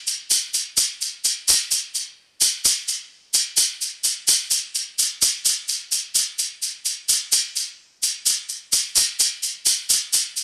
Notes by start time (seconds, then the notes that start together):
0.07 shaker
0.30 shaker
0.54 shaker
0.77 shaker
1.01 shaker
1.25 shaker
1.48 shaker
1.71 shaker
1.95 shaker
2.41 shaker
2.65 shaker
2.88 shaker
3.34 shaker
3.57 shaker
3.81 shaker
4.04 shaker
4.28 shaker
4.51 shaker
4.75 shaker
4.99 shaker
5.22 shaker
5.45 shaker
5.68 shaker
5.92 shaker
6.15 shaker
6.39 shaker
6.62 shaker
6.85 shaker
7.09 shaker
7.32 shaker
7.56 shaker
8.03 shaker
8.26 shaker
8.49 shaker
8.73 shaker
8.96 shaker
9.20 shaker
9.43 shaker
9.66 shaker
9.90 shaker
10.13 shaker
10.37 shaker